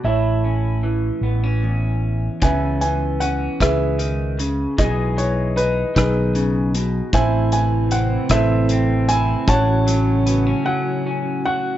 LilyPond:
<<
  \new Staff \with { instrumentName = "Grand piano" } { \time 6/8 \key a \major \tempo 4. = 51 << { e''2 r4 | \key cis \minor gis''8 gis''8 fis''8 e''4. | dis''8 cis''8 b'8 b'4 r8 | gis''8 gis''8 fis''8 e''4 gis''8 |
a''4. fis''4 fis''8 | } \\ { cis''2 r4 | <b' e''>4. <gis' b'>4. | gis'4. <dis' gis'>4. | <c'' e''>4. <a' c''>4. |
<cis'' fis''>2~ <cis'' fis''>8 r8 | } >> }
  \new Staff \with { instrumentName = "French horn" } { \time 6/8 \key a \major r2. | \key cis \minor r2. | r2. | c'2. |
cis'2~ cis'8 r8 | }
  \new Staff \with { instrumentName = "Clean electric guitar" } { \clef bass \time 6/8 \key a \major << { e'8 cis'4 b16 cis'4~ cis'16 | \key cis \minor <e b cis'>4 cis'2 | <e gis dis' gis'>4 dis'2 | e'4 c'4 c'8 e'8 |
fis'4 b16 cis'8. cis'8 fis'8 | } \\ { a,4 e4 e,4 | cis8 e4 e8 dis8 cis8 | b,8 e4 dis8 cis8 b,8 | a,8 e4 e4. |
a,8 fis4 fis4. | } >> }
  \new Staff \with { instrumentName = "String section" } { \clef bass \time 6/8 \key a \major << { r2. | \key cis \minor r2. | r2. | a2.~ |
a2. | } \\ { r2. | r2. | r2. | <c e>2. |
<cis fis>2. | } >> }
  \new Staff \with { instrumentName = "Fretless electric bass" } { \clef bass \time 6/8 \key a \major a,,4. a,,4. | \key cis \minor cis,4. cis,4. | b,,4. b,,4. | a,,4. a,,4. |
a,,4. r4. | }
  \new DrumStaff \with { instrumentName = "Drums" } \drummode { \time 6/8 r4. r4. | <hh bd>8 hh8 hh8 <hh bd ss>8 hh8 hh8 | <hh bd>8 hh8 hh8 <hh bd ss>8 hh8 hh8 | <hh bd>8 hh8 hh8 <hh bd ss>8 hh8 hh8 |
<hh bd>8 hh8 hh8 r4. | }
>>